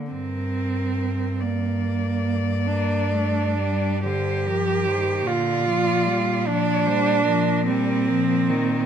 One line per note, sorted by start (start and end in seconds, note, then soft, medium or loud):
0.11 5.21 G2 soft
0.11 1.43 C4 medium
0.11 1.42 A#4 soft
1.41 2.68 A#3 medium
1.41 4.03 D5 soft
2.67 3.13 A#3 medium
2.67 4.03 D4 medium
3.12 3.58 A3 soft
3.58 4.07 G3 medium
4.04 4.47 D3 soft
4.04 5.28 G4 medium
4.04 4.48 C5 medium
4.46 4.89 F3 medium
4.46 4.87 A#4 soft
4.85 5.28 D#3 soft
4.85 5.28 C5 soft
5.26 8.86 A#2 soft
5.26 5.67 D3 soft
5.26 6.48 F4 medium
5.26 6.46 D5 soft
5.65 6.08 F3 soft
6.06 6.47 G3 soft
6.46 6.88 F3 soft
6.46 7.67 D4 medium
6.46 6.88 D5 medium
6.86 7.25 G3 medium
6.86 7.27 C5 medium
7.26 7.68 F3 medium
7.26 8.86 A#4 soft
7.67 8.10 G3 medium
7.67 8.86 C4 medium
8.08 8.51 F3 medium
8.49 8.86 D#3 medium